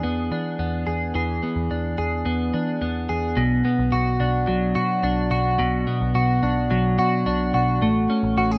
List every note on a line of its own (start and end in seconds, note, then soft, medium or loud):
0.00 1.14 E3 medium
0.00 0.59 B3 medium
0.00 0.31 D4 medium
0.00 0.85 G#4 medium
0.04 0.28 E2 medium
0.31 0.56 E3 medium
0.31 1.70 D4 medium
0.59 0.84 E2 medium
0.59 1.42 B3 medium
0.87 1.11 E2 medium
0.87 1.14 G#4 medium
1.15 1.39 E2 medium
1.15 3.37 E3 medium
1.15 1.97 G#4 medium
1.43 2.25 B3 medium
1.56 1.68 E2 medium
1.71 1.95 E2 medium
1.71 2.53 D4 medium
1.98 2.23 E2 medium
1.98 3.08 G#4 medium
2.25 2.50 E2 medium
2.25 2.81 B3 medium
2.54 2.78 E3 medium
2.54 4.20 D4 medium
2.82 3.06 E2 medium
2.82 3.64 B3 medium
3.09 3.34 E2 medium
3.09 3.42 G#4 medium
3.37 3.61 B1 loud
3.37 5.58 B2 medium
3.65 5.86 B3 medium
3.79 3.91 B1 loud
3.92 4.17 B1 loud
3.92 4.75 F#4 medium
4.20 4.45 B1 loud
4.20 5.02 D4 medium
4.47 4.72 B1 loud
4.47 6.70 F#3 medium
4.75 5.00 B2 medium
4.75 5.31 F#4 medium
5.03 5.28 B1 loud
5.03 6.42 D4 medium
5.31 5.55 B1 loud
5.31 6.15 F#4 medium
5.59 5.84 B1 loud
5.59 7.81 B2 medium
5.87 7.87 B3 medium
6.01 6.13 B1 medium
6.15 6.39 B1 loud
6.15 6.98 F#4 medium
6.43 6.67 B1 loud
6.43 7.25 D4 medium
6.71 6.95 B1 loud
6.71 7.82 F#3 medium
6.99 7.23 B2 medium
6.99 7.54 F#4 medium
7.26 7.50 B1 medium
7.26 7.87 D4 medium
7.54 7.78 B1 loud
7.54 8.37 F#4 medium
7.82 8.06 A1 loud
7.82 8.58 A3 medium
8.10 8.58 C#4 medium
8.23 8.35 A1 loud
8.37 8.58 A1 loud
8.37 8.51 F#4 medium
8.51 8.58 G#4 medium